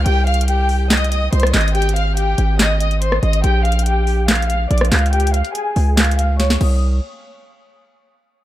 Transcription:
0.06 1.29 C2 loud
0.06 0.26 G4 medium
0.06 0.25 G5 loud
0.06 closed hi-hat medium
0.27 0.46 F5 medium
0.27 0.47 F6 medium
0.27 closed hi-hat medium
0.34 closed hi-hat medium
0.41 closed hi-hat medium
0.48 0.88 G4 medium
0.48 0.88 G5 medium
0.48 closed hi-hat medium
0.69 open hi-hat medium
0.90 1.10 D#5 medium
0.90 1.10 D#6 medium
0.90 snare loud
0.90 clap medium
0.90 closed hi-hat medium
0.97 closed hi-hat medium
1.04 closed hi-hat medium
1.12 1.31 D#5 medium
1.12 1.31 D#6 medium
1.12 closed hi-hat medium
1.33 1.53 C2 loud
1.33 1.52 C5 medium
1.33 1.53 C6 medium
1.33 closed hi-hat medium
1.40 cross-stick loud
1.40 closed hi-hat medium
1.47 closed hi-hat medium
1.54 2.35 G#1 loud
1.54 1.73 D#5 medium
1.54 1.74 D#6 medium
1.54 snare medium
1.54 clap medium
1.54 closed hi-hat soft
1.54 open hi-hat medium
1.61 closed hi-hat soft
1.68 closed hi-hat medium
1.75 1.95 G4 medium
1.75 1.94 G5 loud
1.75 closed hi-hat medium
1.82 closed hi-hat medium
1.89 closed hi-hat medium
1.96 2.15 F5 medium
1.96 2.16 F6 medium
1.96 closed hi-hat medium
2.17 2.57 G4 medium
2.17 2.57 G5 medium
2.17 closed hi-hat medium
2.38 3.19 G#1 loud
2.38 closed hi-hat medium
2.59 2.79 D#5 medium
2.59 2.79 D#6 medium
2.59 snare loud
2.59 clap medium
2.59 closed hi-hat medium
2.80 3.00 D#5 medium
2.80 3.00 D#6 medium
2.80 closed hi-hat medium
2.91 closed hi-hat soft
3.02 3.21 C5 medium
3.02 3.22 C6 medium
3.02 closed hi-hat medium
3.12 cross-stick medium
3.23 3.43 G#1 loud
3.23 3.42 D#5 medium
3.23 3.43 D#6 medium
3.23 closed hi-hat soft
3.33 closed hi-hat medium
3.44 4.67 A#1 loud
3.44 3.64 G4 medium
3.44 3.63 G5 loud
3.44 closed hi-hat medium
3.65 3.85 F5 medium
3.65 3.85 F6 medium
3.65 closed hi-hat medium
3.72 closed hi-hat medium
3.79 closed hi-hat medium
3.86 4.26 G4 medium
3.86 4.26 G5 medium
3.86 closed hi-hat medium
4.07 open hi-hat medium
4.28 4.48 F5 medium
4.28 4.48 F6 medium
4.28 snare loud
4.28 clap medium
4.28 closed hi-hat medium
4.35 closed hi-hat medium
4.42 closed hi-hat medium
4.50 4.69 F5 medium
4.50 4.69 F6 medium
4.50 closed hi-hat medium
4.71 4.91 A#1 loud
4.71 4.90 D5 medium
4.71 4.91 D6 medium
4.71 closed hi-hat medium
4.78 cross-stick medium
4.78 closed hi-hat medium
4.85 closed hi-hat medium
4.92 5.42 C#2 loud
4.92 5.11 F5 medium
4.92 5.12 F6 medium
4.92 snare medium
4.92 clap medium
4.92 closed hi-hat soft
4.92 open hi-hat medium
4.99 closed hi-hat soft
5.06 closed hi-hat medium
5.13 5.33 G4 medium
5.13 5.32 G5 loud
5.13 closed hi-hat medium
5.20 closed hi-hat medium
5.27 closed hi-hat medium
5.34 5.54 F5 medium
5.34 5.54 F6 medium
5.34 closed hi-hat medium
5.45 closed hi-hat soft
5.55 5.95 G#4 medium
5.55 5.95 G#5 medium
5.55 closed hi-hat medium
5.76 6.57 C#2 loud
5.76 open hi-hat medium
5.97 6.17 F5 medium
5.97 6.17 F6 medium
5.97 snare loud
5.97 clap medium
5.97 closed hi-hat soft
6.04 closed hi-hat medium
6.11 closed hi-hat medium
6.19 6.38 F5 medium
6.19 6.39 F6 medium
6.19 closed hi-hat medium
6.40 6.59 C#5 medium
6.40 6.60 C#6 medium
6.40 snare medium
6.40 closed hi-hat medium
6.50 snare medium
6.61 7.00 C2 loud
6.61 6.80 D#6 medium
6.61 crash medium

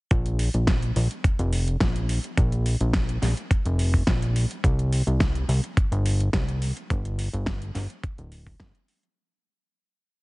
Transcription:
0.11 0.49 A#1 loud
0.11 kick loud
0.11 closed hi-hat medium
0.26 closed hi-hat soft
0.39 open hi-hat loud
0.54 0.92 A#1 medium
0.54 closed hi-hat soft
0.67 kick loud
0.67 snare loud
0.67 closed hi-hat medium
0.82 closed hi-hat soft
0.96 1.08 A#1 medium
0.96 open hi-hat loud
1.11 closed hi-hat soft
1.24 1.36 F1 soft
1.24 kick loud
1.24 closed hi-hat medium
1.39 1.77 F1 medium
1.39 closed hi-hat soft
1.53 open hi-hat loud
1.68 closed hi-hat soft
1.80 2.19 A#1 medium
1.80 kick loud
1.80 snare loud
1.80 closed hi-hat medium
1.96 closed hi-hat soft
2.09 open hi-hat loud
2.24 closed hi-hat soft
2.37 2.76 A#1 loud
2.37 kick loud
2.37 closed hi-hat medium
2.52 closed hi-hat soft
2.66 open hi-hat loud
2.81 3.18 A#1 medium
2.81 closed hi-hat soft
2.93 kick loud
2.93 snare loud
2.93 closed hi-hat medium
3.09 closed hi-hat soft
3.22 3.34 A#1 medium
3.22 snare soft
3.22 open hi-hat loud
3.37 closed hi-hat soft
3.51 kick loud
3.51 closed hi-hat medium
3.65 4.03 F1 loud
3.65 closed hi-hat soft
3.79 open hi-hat loud
3.94 kick medium
3.94 open hi-hat medium
4.07 4.46 A#1 medium
4.07 kick loud
4.07 snare loud
4.07 closed hi-hat medium
4.22 closed hi-hat soft
4.36 open hi-hat loud
4.51 closed hi-hat soft
4.64 5.02 C2 medium
4.64 kick loud
4.64 closed hi-hat medium
4.79 closed hi-hat soft
4.93 open hi-hat loud
5.07 5.44 C2 medium
5.07 closed hi-hat soft
5.20 kick loud
5.20 snare loud
5.20 closed hi-hat medium
5.35 closed hi-hat soft
5.49 5.61 C2 medium
5.49 open hi-hat loud
5.64 closed hi-hat soft
5.77 5.89 G1 soft
5.77 kick loud
5.77 closed hi-hat medium
5.92 6.29 G1 loud
5.92 closed hi-hat soft
6.06 open hi-hat loud
6.20 closed hi-hat soft
6.33 6.72 C2 medium
6.33 kick loud
6.33 snare loud
6.33 closed hi-hat medium
6.49 closed hi-hat soft
6.62 open hi-hat loud
6.77 closed hi-hat soft
6.90 7.29 G1 loud
6.90 kick loud
6.90 closed hi-hat medium
7.05 closed hi-hat soft
7.19 open hi-hat loud
7.33 7.71 G1 medium
7.33 closed hi-hat soft
7.46 kick loud
7.46 snare loud
7.46 closed hi-hat medium
7.62 closed hi-hat soft
7.75 7.87 G1 medium
7.75 snare soft
7.75 open hi-hat loud
7.90 closed hi-hat soft
8.03 kick loud
8.03 closed hi-hat medium
8.18 8.56 D1 medium
8.18 closed hi-hat soft
8.32 open hi-hat loud
8.47 kick medium
8.47 open hi-hat medium
8.60 8.72 G1 medium
8.60 kick loud
8.60 snare loud
8.60 closed hi-hat medium
8.75 closed hi-hat soft
8.88 open hi-hat loud
9.03 closed hi-hat soft

